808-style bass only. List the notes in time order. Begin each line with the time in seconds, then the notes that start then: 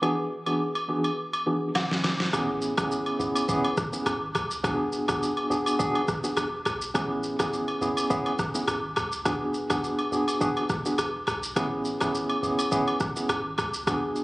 2.33 A1
2.78 G#1
3.20 F#1
4.06 G#1
4.35 C#2
4.64 E1
5.09 E1
5.50 D1
6.37 E1
6.66 B1
6.95 A1
7.40 G#1
7.81 F#1
8.68 G#1
8.97 C#2
9.26 E1
9.70 E1
10.12 D1
10.99 E1
11.28 B1
11.56 A1
12.01 G#1
12.43 F#1
13.29 G#1
13.58 C#2
13.87 E1